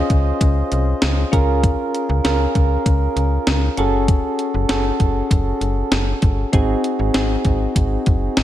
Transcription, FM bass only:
0, 0, Header, 1, 2, 480
1, 0, Start_track
1, 0, Tempo, 612245
1, 1282, Time_signature, 4, 2, 24, 8
1, 6610, End_track
2, 0, Start_track
2, 0, Title_t, "FM bass"
2, 0, Program_c, 0, 39
2, 79, Note_on_c, 0, 37, 92
2, 253, Note_off_c, 0, 37, 0
2, 320, Note_on_c, 0, 37, 96
2, 494, Note_off_c, 0, 37, 0
2, 563, Note_on_c, 0, 36, 93
2, 735, Note_off_c, 0, 36, 0
2, 803, Note_on_c, 0, 37, 99
2, 975, Note_off_c, 0, 37, 0
2, 1041, Note_on_c, 0, 37, 88
2, 1387, Note_off_c, 0, 37, 0
2, 1641, Note_on_c, 0, 37, 94
2, 1728, Note_off_c, 0, 37, 0
2, 1761, Note_on_c, 0, 37, 94
2, 1934, Note_off_c, 0, 37, 0
2, 2002, Note_on_c, 0, 37, 91
2, 2174, Note_off_c, 0, 37, 0
2, 2241, Note_on_c, 0, 37, 94
2, 2414, Note_off_c, 0, 37, 0
2, 2479, Note_on_c, 0, 37, 82
2, 2653, Note_off_c, 0, 37, 0
2, 2721, Note_on_c, 0, 37, 101
2, 2894, Note_off_c, 0, 37, 0
2, 2961, Note_on_c, 0, 30, 88
2, 3307, Note_off_c, 0, 30, 0
2, 3561, Note_on_c, 0, 30, 91
2, 3648, Note_off_c, 0, 30, 0
2, 3680, Note_on_c, 0, 30, 88
2, 3853, Note_off_c, 0, 30, 0
2, 3920, Note_on_c, 0, 30, 84
2, 4093, Note_off_c, 0, 30, 0
2, 4161, Note_on_c, 0, 30, 101
2, 4334, Note_off_c, 0, 30, 0
2, 4397, Note_on_c, 0, 30, 81
2, 4571, Note_off_c, 0, 30, 0
2, 4638, Note_on_c, 0, 30, 100
2, 4812, Note_off_c, 0, 30, 0
2, 4880, Note_on_c, 0, 31, 95
2, 5054, Note_off_c, 0, 31, 0
2, 5122, Note_on_c, 0, 32, 102
2, 5295, Note_off_c, 0, 32, 0
2, 5482, Note_on_c, 0, 32, 90
2, 5568, Note_off_c, 0, 32, 0
2, 5602, Note_on_c, 0, 32, 96
2, 5775, Note_off_c, 0, 32, 0
2, 5840, Note_on_c, 0, 32, 94
2, 6013, Note_off_c, 0, 32, 0
2, 6081, Note_on_c, 0, 32, 92
2, 6254, Note_off_c, 0, 32, 0
2, 6326, Note_on_c, 0, 30, 86
2, 6497, Note_off_c, 0, 30, 0
2, 6564, Note_on_c, 0, 32, 97
2, 6610, Note_off_c, 0, 32, 0
2, 6610, End_track
0, 0, End_of_file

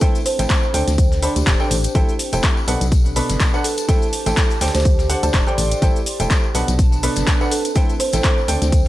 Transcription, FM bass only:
0, 0, Header, 1, 2, 480
1, 0, Start_track
1, 0, Key_signature, 0, "minor"
1, 0, Tempo, 483871
1, 15, Time_signature, 4, 2, 24, 8
1, 8810, End_track
2, 0, Start_track
2, 0, Title_t, "FM bass"
2, 0, Program_c, 0, 39
2, 388, Note_on_c, 0, 33, 81
2, 454, Note_off_c, 0, 33, 0
2, 734, Note_on_c, 0, 38, 78
2, 817, Note_off_c, 0, 38, 0
2, 869, Note_on_c, 0, 38, 96
2, 1266, Note_off_c, 0, 38, 0
2, 1349, Note_on_c, 0, 38, 90
2, 1414, Note_off_c, 0, 38, 0
2, 1455, Note_on_c, 0, 26, 86
2, 1537, Note_off_c, 0, 26, 0
2, 1695, Note_on_c, 0, 33, 105
2, 1854, Note_off_c, 0, 33, 0
2, 1934, Note_on_c, 0, 33, 98
2, 2017, Note_off_c, 0, 33, 0
2, 2309, Note_on_c, 0, 28, 82
2, 2374, Note_off_c, 0, 28, 0
2, 2655, Note_on_c, 0, 35, 77
2, 2737, Note_off_c, 0, 35, 0
2, 2789, Note_on_c, 0, 35, 94
2, 3186, Note_off_c, 0, 35, 0
2, 3270, Note_on_c, 0, 30, 82
2, 3335, Note_off_c, 0, 30, 0
2, 4229, Note_on_c, 0, 33, 82
2, 4294, Note_off_c, 0, 33, 0
2, 4575, Note_on_c, 0, 38, 78
2, 4657, Note_off_c, 0, 38, 0
2, 4709, Note_on_c, 0, 38, 93
2, 5107, Note_off_c, 0, 38, 0
2, 5189, Note_on_c, 0, 38, 90
2, 5254, Note_off_c, 0, 38, 0
2, 5294, Note_on_c, 0, 26, 84
2, 5377, Note_off_c, 0, 26, 0
2, 5535, Note_on_c, 0, 33, 106
2, 5693, Note_off_c, 0, 33, 0
2, 5774, Note_on_c, 0, 33, 97
2, 5857, Note_off_c, 0, 33, 0
2, 6149, Note_on_c, 0, 28, 82
2, 6214, Note_off_c, 0, 28, 0
2, 6495, Note_on_c, 0, 35, 76
2, 6577, Note_off_c, 0, 35, 0
2, 6629, Note_on_c, 0, 35, 98
2, 7027, Note_off_c, 0, 35, 0
2, 7109, Note_on_c, 0, 30, 82
2, 7174, Note_off_c, 0, 30, 0
2, 8069, Note_on_c, 0, 33, 86
2, 8134, Note_off_c, 0, 33, 0
2, 8415, Note_on_c, 0, 38, 74
2, 8497, Note_off_c, 0, 38, 0
2, 8549, Note_on_c, 0, 38, 93
2, 8810, Note_off_c, 0, 38, 0
2, 8810, End_track
0, 0, End_of_file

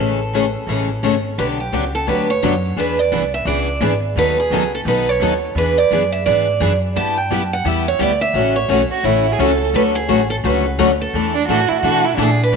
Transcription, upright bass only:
0, 0, Header, 1, 3, 480
1, 0, Start_track
1, 0, Tempo, 348635
1, 1889, Time_signature, 4, 2, 24, 8
1, 17297, End_track
2, 0, Start_track
2, 0, Title_t, "Upright bass"
2, 0, Program_c, 0, 32
2, 0, Note_on_c, 0, 33, 71
2, 731, Note_off_c, 0, 33, 0
2, 919, Note_on_c, 0, 33, 71
2, 1331, Note_off_c, 0, 33, 0
2, 1417, Note_on_c, 0, 32, 73
2, 1822, Note_off_c, 0, 32, 0
2, 1902, Note_on_c, 0, 35, 72
2, 2362, Note_off_c, 0, 35, 0
2, 2372, Note_on_c, 0, 37, 73
2, 2837, Note_off_c, 0, 37, 0
2, 2856, Note_on_c, 0, 38, 75
2, 3319, Note_off_c, 0, 38, 0
2, 3345, Note_on_c, 0, 42, 84
2, 3798, Note_off_c, 0, 42, 0
2, 3806, Note_on_c, 0, 40, 71
2, 4274, Note_off_c, 0, 40, 0
2, 4292, Note_on_c, 0, 36, 78
2, 4745, Note_off_c, 0, 36, 0
2, 4754, Note_on_c, 0, 37, 88
2, 5228, Note_off_c, 0, 37, 0
2, 5239, Note_on_c, 0, 32, 87
2, 5711, Note_off_c, 0, 32, 0
2, 5721, Note_on_c, 0, 39, 76
2, 6192, Note_off_c, 0, 39, 0
2, 6203, Note_on_c, 0, 37, 76
2, 6669, Note_off_c, 0, 37, 0
2, 6678, Note_on_c, 0, 35, 79
2, 7147, Note_off_c, 0, 35, 0
2, 7155, Note_on_c, 0, 39, 85
2, 7630, Note_off_c, 0, 39, 0
2, 7639, Note_on_c, 0, 40, 79
2, 8112, Note_off_c, 0, 40, 0
2, 8131, Note_on_c, 0, 42, 78
2, 8599, Note_off_c, 0, 42, 0
2, 8625, Note_on_c, 0, 44, 81
2, 9086, Note_off_c, 0, 44, 0
2, 9093, Note_on_c, 0, 42, 87
2, 9560, Note_off_c, 0, 42, 0
2, 9586, Note_on_c, 0, 43, 68
2, 10046, Note_off_c, 0, 43, 0
2, 10056, Note_on_c, 0, 42, 73
2, 10522, Note_off_c, 0, 42, 0
2, 10527, Note_on_c, 0, 40, 83
2, 10997, Note_off_c, 0, 40, 0
2, 11007, Note_on_c, 0, 38, 93
2, 11472, Note_off_c, 0, 38, 0
2, 11480, Note_on_c, 0, 33, 73
2, 11953, Note_off_c, 0, 33, 0
2, 11960, Note_on_c, 0, 35, 82
2, 12233, Note_off_c, 0, 35, 0
2, 12438, Note_on_c, 0, 33, 77
2, 12912, Note_off_c, 0, 33, 0
2, 12926, Note_on_c, 0, 37, 90
2, 13396, Note_off_c, 0, 37, 0
2, 13406, Note_on_c, 0, 38, 82
2, 13875, Note_off_c, 0, 38, 0
2, 13893, Note_on_c, 0, 33, 73
2, 14358, Note_off_c, 0, 33, 0
2, 14367, Note_on_c, 0, 37, 87
2, 14835, Note_off_c, 0, 37, 0
2, 14848, Note_on_c, 0, 38, 87
2, 15315, Note_off_c, 0, 38, 0
2, 15328, Note_on_c, 0, 40, 81
2, 15795, Note_off_c, 0, 40, 0
2, 15810, Note_on_c, 0, 45, 77
2, 16076, Note_off_c, 0, 45, 0
2, 16281, Note_on_c, 0, 47, 80
2, 16750, Note_off_c, 0, 47, 0
2, 16759, Note_on_c, 0, 46, 88
2, 17229, Note_off_c, 0, 46, 0
2, 17242, Note_on_c, 0, 33, 76
2, 17297, Note_off_c, 0, 33, 0
2, 17297, End_track
3, 0, Start_track
3, 0, Title_t, "Muted upright bass strokes"
3, 12250, Note_on_c, 9, 29, 38
3, 12387, Note_off_c, 9, 29, 0
3, 16101, Note_on_c, 9, 29, 39
3, 16239, Note_off_c, 9, 29, 0
3, 17297, End_track
0, 0, End_of_file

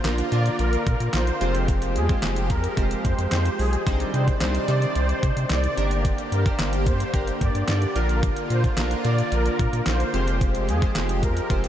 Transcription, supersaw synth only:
0, 0, Header, 1, 2, 480
1, 0, Start_track
1, 0, Tempo, 545455
1, 1482, Time_signature, 4, 2, 24, 8
1, 10279, End_track
2, 0, Start_track
2, 0, Title_t, "Supersaw synth"
2, 0, Program_c, 0, 81
2, 283, Note_on_c, 0, 74, 87
2, 486, Note_off_c, 0, 74, 0
2, 522, Note_on_c, 0, 70, 101
2, 726, Note_off_c, 0, 70, 0
2, 762, Note_on_c, 0, 70, 88
2, 864, Note_off_c, 0, 70, 0
2, 1002, Note_on_c, 0, 72, 89
2, 1340, Note_off_c, 0, 72, 0
2, 1722, Note_on_c, 0, 68, 85
2, 1824, Note_off_c, 0, 68, 0
2, 2202, Note_on_c, 0, 70, 85
2, 2406, Note_off_c, 0, 70, 0
2, 2681, Note_on_c, 0, 72, 88
2, 2885, Note_off_c, 0, 72, 0
2, 2922, Note_on_c, 0, 72, 80
2, 3024, Note_off_c, 0, 72, 0
2, 3161, Note_on_c, 0, 68, 92
2, 3263, Note_off_c, 0, 68, 0
2, 3642, Note_on_c, 0, 72, 87
2, 3744, Note_off_c, 0, 72, 0
2, 4122, Note_on_c, 0, 74, 88
2, 4326, Note_off_c, 0, 74, 0
2, 4362, Note_on_c, 0, 72, 98
2, 4566, Note_off_c, 0, 72, 0
2, 4602, Note_on_c, 0, 72, 87
2, 4704, Note_off_c, 0, 72, 0
2, 4843, Note_on_c, 0, 74, 90
2, 5181, Note_off_c, 0, 74, 0
2, 5563, Note_on_c, 0, 70, 81
2, 5664, Note_off_c, 0, 70, 0
2, 6043, Note_on_c, 0, 72, 84
2, 6247, Note_off_c, 0, 72, 0
2, 6524, Note_on_c, 0, 74, 87
2, 6727, Note_off_c, 0, 74, 0
2, 6763, Note_on_c, 0, 74, 85
2, 6865, Note_off_c, 0, 74, 0
2, 7002, Note_on_c, 0, 70, 85
2, 7104, Note_off_c, 0, 70, 0
2, 7482, Note_on_c, 0, 72, 86
2, 7584, Note_off_c, 0, 72, 0
2, 7962, Note_on_c, 0, 74, 90
2, 8166, Note_off_c, 0, 74, 0
2, 8202, Note_on_c, 0, 70, 96
2, 8406, Note_off_c, 0, 70, 0
2, 8443, Note_on_c, 0, 70, 85
2, 8544, Note_off_c, 0, 70, 0
2, 8683, Note_on_c, 0, 72, 84
2, 9021, Note_off_c, 0, 72, 0
2, 9403, Note_on_c, 0, 68, 83
2, 9504, Note_off_c, 0, 68, 0
2, 9883, Note_on_c, 0, 70, 86
2, 10086, Note_off_c, 0, 70, 0
2, 10279, End_track
0, 0, End_of_file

